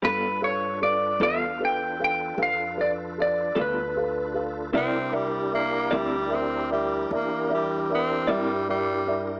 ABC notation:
X:1
M:12/8
L:1/16
Q:3/8=51
K:Gmix
V:1 name="Electric slide guitar"
B2 ^c2 d2 f2 g2 g2 f2 d2 d2 B4 z2 | z24 |]
V:2 name="Upright piano"
[ABf]2 [ABf]2 [ABf]2 [ABf]2 [ABf]2 [ABf]2 [ABf]2 [ABf]2 [ABf]2 [ABf]2 [ABf]2 [ABf]2 | [_Bde]2 [Bde]2 [Bde]2 [Bde]2 [Bde]2 [Bde]2 [Bde]2 [Bde]2 [Bde]2 [Bde]2 [Bde]2 [Bde]2 |]
V:3 name="Tonewheel organ"
[DFAB]24 | [DEG_B]24 |]
V:4 name="Clean electric guitar"
[G,B,FA]2 z4 [G,B,FA]2 z8 z2 [G,B,FA]2 z4 | [CE_Bd]2 z4 [CEBd]2 z8 z2 [CEBd]2 z4 |]
V:5 name="Tenor saxophone" clef=bass
z24 | C2 G,2 _B,2 G,2 C2 G,2 B,2 G,2 C2 G,2 G,3 z |]
V:6 name="Upright bass" clef=bass
G,,6 E,,6 F,,6 D,,6 | C,,6 D,,6 E,,6 G,,6 |]